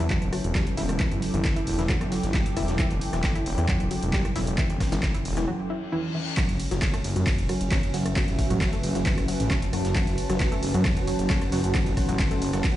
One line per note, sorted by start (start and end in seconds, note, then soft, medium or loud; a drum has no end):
0.00 5.48 F#3 medium
0.00 5.48 C#4 medium
0.00 5.48 E4 medium
0.00 5.48 A4 medium
0.00 0.32 B4 medium
0.00 0.45 E5 medium
0.00 5.48 D6 medium
0.10 0.15 F#3 medium
0.10 kick loud
0.10 clap loud
0.10 closed hi-hat medium
0.10 tambourine medium
0.22 0.31 D1 medium
0.22 closed hi-hat medium
0.33 0.37 F#3 medium
0.33 cross-stick medium
0.33 open hi-hat loud
0.33 tambourine medium
0.44 0.54 E1 medium
0.44 closed hi-hat medium
0.55 0.61 G3 medium
0.55 kick loud
0.55 snare loud
0.55 clap loud
0.55 closed hi-hat medium
0.55 tambourine medium
0.67 5.48 G5 loud
0.67 closed hi-hat medium
0.77 0.87 E1 loud
0.77 0.82 E4 medium
0.77 snare medium
0.77 open hi-hat loud
0.77 tambourine medium
0.89 0.98 E1 medium
0.89 cross-stick medium
0.89 closed hi-hat medium
1.00 1.02 E3 medium
1.00 kick loud
1.00 clap loud
1.00 closed hi-hat medium
1.00 tambourine medium
1.12 1.21 G1 medium
1.12 closed hi-hat medium
1.22 snare soft
1.22 open hi-hat loud
1.22 tambourine medium
1.34 1.43 G1 medium
1.34 1.40 E3 medium
1.34 closed hi-hat medium
1.45 kick loud
1.45 cross-stick medium
1.45 snare loud
1.45 clap loud
1.45 closed hi-hat medium
1.45 tambourine medium
1.56 1.60 E4 medium
1.56 closed hi-hat medium
1.67 1.77 E1 loud
1.67 open hi-hat loud
1.67 tambourine medium
1.79 1.88 E1 medium
1.79 1.84 E3 loud
1.79 snare soft
1.79 closed hi-hat medium
1.89 1.94 F#3 medium
1.89 kick loud
1.89 clap loud
1.89 closed hi-hat medium
1.89 tambourine medium
2.01 2.10 G1 medium
2.01 cross-stick medium
2.01 closed hi-hat medium
2.12 2.16 F#3 medium
2.12 snare soft
2.12 open hi-hat loud
2.12 tambourine medium
2.23 2.33 G1 medium
2.23 snare soft
2.23 closed hi-hat medium
2.34 2.41 G3 medium
2.34 kick loud
2.34 snare loud
2.34 clap loud
2.34 closed hi-hat medium
2.34 tambourine medium
2.46 closed hi-hat medium
2.46 closed hi-hat soft
2.57 2.67 E1 loud
2.57 2.61 E4 loud
2.57 cross-stick medium
2.57 open hi-hat loud
2.57 tambourine medium
2.68 2.77 E1 medium
2.68 snare medium
2.68 closed hi-hat medium
2.79 2.82 E3 medium
2.79 kick loud
2.79 clap loud
2.79 closed hi-hat medium
2.79 tambourine medium
2.91 3.00 E1 medium
2.91 closed hi-hat medium
3.01 open hi-hat loud
3.01 tambourine medium
3.13 3.22 E1 medium
3.13 3.19 E3 medium
3.13 cross-stick medium
3.13 snare soft
3.13 closed hi-hat medium
3.24 kick loud
3.24 snare loud
3.24 clap loud
3.24 closed hi-hat medium
3.24 tambourine medium
3.35 3.39 E4 medium
3.35 closed hi-hat medium
3.46 3.56 E1 loud
3.46 open hi-hat loud
3.46 tambourine medium
3.58 3.67 E2 medium
3.58 3.64 E3 loud
3.58 closed hi-hat medium
3.68 3.73 F#3 medium
3.68 kick loud
3.68 cross-stick medium
3.68 clap loud
3.68 closed hi-hat medium
3.68 tambourine medium
3.80 3.89 D1 medium
3.80 closed hi-hat medium
3.91 3.95 F#3 medium
3.91 open hi-hat loud
3.91 tambourine medium
4.03 4.12 E1 medium
4.03 closed hi-hat medium
4.13 4.20 G3 medium
4.13 kick loud
4.13 snare loud
4.13 clap loud
4.13 closed hi-hat medium
4.13 tambourine medium
4.25 cross-stick medium
4.25 closed hi-hat medium
4.36 4.46 E1 loud
4.36 4.40 E4 loud
4.36 snare medium
4.36 open hi-hat medium
4.36 tambourine medium
4.47 4.57 E1 medium
4.47 closed hi-hat medium
4.58 4.61 E3 medium
4.58 kick loud
4.58 clap loud
4.58 closed hi-hat medium
4.58 tambourine medium
4.70 4.79 G1 medium
4.70 closed hi-hat medium
4.80 kick medium
4.80 cross-stick medium
4.80 snare loud
4.80 open hi-hat loud
4.80 tambourine medium
4.92 5.01 G1 medium
4.92 4.98 E3 medium
4.92 snare loud
4.92 closed hi-hat medium
4.92 tambourine medium
5.03 kick loud
5.03 snare loud
5.03 clap loud
5.03 closed hi-hat medium
5.03 tambourine medium
5.14 5.18 E4 medium
5.14 closed hi-hat medium
5.25 5.35 E1 loud
5.25 open hi-hat loud
5.25 tambourine medium
5.37 5.46 E1 medium
5.37 5.43 E3 loud
5.37 cross-stick medium
5.37 snare soft
5.37 closed hi-hat medium
5.48 5.52 F#3 medium
5.48 reverse cymbal medium
5.70 5.74 E4 medium
5.92 5.99 E3 loud
6.15 6.21 E3 medium
6.37 12.77 F#3 medium
6.37 6.41 F#3 medium
6.37 12.77 C#4 medium
6.37 12.77 F#4 medium
6.37 kick loud
6.37 cross-stick medium
6.37 clap loud
6.37 closed hi-hat medium
6.37 ride medium
6.37 tambourine medium
6.37 impact medium
6.49 6.58 F#1 medium
6.49 closed hi-hat medium
6.60 open hi-hat loud
6.60 tambourine medium
6.71 6.80 F#1 medium
6.71 6.77 F#3 medium
6.71 snare soft
6.71 closed hi-hat medium
6.82 10.46 E5 medium
6.82 kick loud
6.82 snare loud
6.82 clap loud
6.82 closed hi-hat medium
6.82 ride medium
6.82 tambourine medium
6.88 12.77 B4 medium
6.94 6.97 A3 medium
6.94 cross-stick medium
6.94 closed hi-hat medium
7.04 7.14 F#1 loud
7.04 open hi-hat loud
7.04 tambourine medium
7.16 7.25 F#2 medium
7.16 7.22 F#3 medium
7.16 closed hi-hat medium
7.27 kick loud
7.27 clap loud
7.27 closed hi-hat medium
7.27 ride medium
7.27 tambourine medium
7.38 7.48 E1 medium
7.38 closed hi-hat medium
7.49 7.53 F#3 medium
7.49 cross-stick medium
7.49 open hi-hat loud
7.49 tambourine medium
7.61 7.70 F#1 medium
7.61 closed hi-hat medium
7.72 7.74 C#4 medium
7.72 kick loud
7.72 snare loud
7.72 clap loud
7.72 closed hi-hat medium
7.72 ride medium
7.72 tambourine medium
7.83 closed hi-hat medium
7.94 8.04 F#1 loud
7.94 8.00 F#3 medium
7.94 snare medium
7.94 open hi-hat loud
7.94 tambourine medium
8.06 8.15 F#1 medium
8.06 cross-stick medium
8.06 closed hi-hat medium
8.11 12.77 A5 medium
8.16 8.21 F#3 medium
8.16 kick loud
8.16 clap loud
8.16 closed hi-hat medium
8.16 ride medium
8.16 tambourine medium
8.28 8.37 A1 medium
8.28 closed hi-hat medium
8.39 kick medium
8.39 snare soft
8.39 open hi-hat loud
8.39 tambourine medium
8.50 8.60 A1 medium
8.50 8.56 F#3 medium
8.50 closed hi-hat medium
8.61 kick loud
8.61 cross-stick medium
8.61 snare loud
8.61 clap loud
8.61 closed hi-hat medium
8.61 ride medium
8.61 tambourine medium
8.73 8.77 A3 medium
8.73 closed hi-hat medium
8.83 8.93 F#1 loud
8.83 open hi-hat loud
8.83 tambourine medium
8.95 9.04 F#1 medium
8.95 9.01 F#3 medium
8.95 snare soft
8.95 closed hi-hat medium
9.06 kick loud
9.06 clap loud
9.06 closed hi-hat medium
9.06 ride medium
9.06 tambourine medium
9.18 9.27 A1 medium
9.18 cross-stick medium
9.18 closed hi-hat medium
9.28 9.32 F#3 medium
9.28 snare soft
9.28 open hi-hat loud
9.28 tambourine medium
9.40 9.49 A1 medium
9.40 snare soft
9.40 closed hi-hat medium
9.51 9.53 C#4 medium
9.51 kick loud
9.51 snare loud
9.51 clap loud
9.51 closed hi-hat medium
9.51 ride medium
9.51 tambourine medium
9.62 closed hi-hat soft
9.62 closed hi-hat medium
9.73 9.83 F#1 loud
9.73 9.79 F#3 medium
9.73 cross-stick medium
9.73 open hi-hat loud
9.73 tambourine medium
9.85 9.94 F#1 medium
9.85 snare medium
9.85 closed hi-hat medium
9.95 10.00 F#3 medium
9.95 kick loud
9.95 clap loud
9.95 closed hi-hat medium
9.95 ride medium
9.95 tambourine medium
10.07 10.16 F#1 medium
10.07 closed hi-hat medium
10.18 open hi-hat loud
10.18 tambourine medium
10.30 10.39 F#1 medium
10.30 10.35 F#3 medium
10.30 12.77 F#5 medium
10.30 cross-stick medium
10.30 snare soft
10.30 closed hi-hat medium
10.40 kick loud
10.40 snare loud
10.40 clap loud
10.40 closed hi-hat medium
10.40 ride medium
10.40 tambourine medium
10.52 10.56 A3 medium
10.52 closed hi-hat medium
10.63 10.73 F#1 loud
10.63 open hi-hat loud
10.63 tambourine medium
10.74 10.83 F#2 medium
10.74 10.80 F#3 medium
10.74 closed hi-hat medium
10.85 kick loud
10.85 cross-stick medium
10.85 clap loud
10.85 closed hi-hat medium
10.85 ride medium
10.85 tambourine medium
10.97 11.06 E1 medium
10.97 closed hi-hat medium
11.07 11.12 F#3 medium
11.07 open hi-hat loud
11.07 tambourine medium
11.19 11.28 F#1 medium
11.19 closed hi-hat medium
11.30 11.32 C#4 medium
11.30 kick loud
11.30 snare loud
11.30 clap loud
11.30 closed hi-hat medium
11.30 ride medium
11.30 tambourine medium
11.42 cross-stick medium
11.42 closed hi-hat medium
11.52 11.62 F#1 loud
11.52 11.58 F#3 medium
11.52 snare medium
11.52 open hi-hat loud
11.52 tambourine medium
11.64 11.73 F#1 medium
11.64 closed hi-hat medium
11.75 11.79 F#3 medium
11.75 kick loud
11.75 clap loud
11.75 closed hi-hat medium
11.75 ride medium
11.75 tambourine medium
11.86 11.95 A1 medium
11.86 closed hi-hat medium
11.97 kick medium
11.97 cross-stick medium
11.97 snare soft
11.97 open hi-hat loud
11.97 tambourine medium
12.09 12.18 A1 medium
12.09 12.14 F#3 medium
12.09 closed hi-hat medium
12.19 kick loud
12.19 snare loud
12.19 clap loud
12.19 closed hi-hat medium
12.19 ride medium
12.19 tambourine medium
12.31 12.35 A3 medium
12.31 closed hi-hat medium
12.42 12.52 F#1 loud
12.42 open hi-hat loud
12.42 tambourine medium
12.53 12.63 F#1 medium
12.53 12.59 F#3 medium
12.53 cross-stick medium
12.53 snare soft
12.53 closed hi-hat medium
12.64 kick loud
12.64 clap loud
12.64 closed hi-hat medium
12.64 ride medium
12.64 tambourine medium